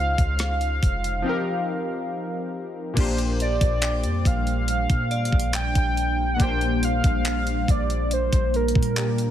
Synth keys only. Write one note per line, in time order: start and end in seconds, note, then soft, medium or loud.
0.00 1.20 C#3 medium
0.00 1.21 G#3 medium
0.00 1.21 D#4 medium
0.00 1.22 F4 medium
0.00 1.23 C5 medium
1.22 2.92 F3 medium
1.22 2.93 C4 medium
1.22 2.94 D#4 medium
1.27 2.94 G4 medium
1.27 2.95 A#4 medium
2.94 6.34 A#2 medium
2.94 6.35 A#3 medium
2.94 6.36 D4 medium
2.99 6.37 G4 medium
2.99 6.38 C5 medium
6.36 8.91 A#2 medium
6.36 8.92 A#3 medium
6.36 8.93 D4 medium
6.42 8.94 G4 medium
6.42 8.95 C5 medium
8.95 9.31 A#2 medium
8.95 9.31 A#3 soft
8.95 9.31 D4 soft
8.95 9.31 G4 soft
8.95 9.31 A#4 medium